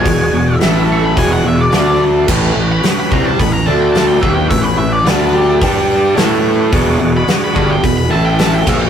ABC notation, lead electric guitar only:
X:1
M:4/4
L:1/16
Q:1/4=108
K:A
V:1 name="Lead electric guitar"
g4 z2 c' b g f e d d2 z2 | z3 b z b ^a =a b ^a =a =g a g e g | e B e d B2 =G2 z8 | z3 b z b b =g b b a g a g e g |]